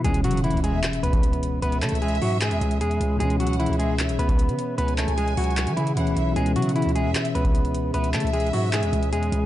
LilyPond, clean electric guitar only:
\new Staff \with { instrumentName = "Clean electric guitar" } { \time 4/4 \key cis \minor \tempo 4 = 152 <gis gis'>8 <fis fis'>8 <e e'>8 <gis gis'>8 r8 <b b'>4. | <b b'>8 <a a'>8 <gis gis'>8 <fis fis'>8 <gis gis'>4 <gis gis'>4 | <gis gis'>8 <fis fis'>8 <e e'>8 <gis gis'>8 r8 <b b'>4. | <b b'>8 <a a'>8 <gis gis'>8 <fis fis'>4 <e e'>8 <e e'>4 |
<gis gis'>8 <fis fis'>8 <e e'>8 <gis gis'>8 r8 <b b'>4. | <b b'>8 <a a'>8 <gis gis'>8 <fis fis'>8 <gis gis'>4 <gis gis'>4 | }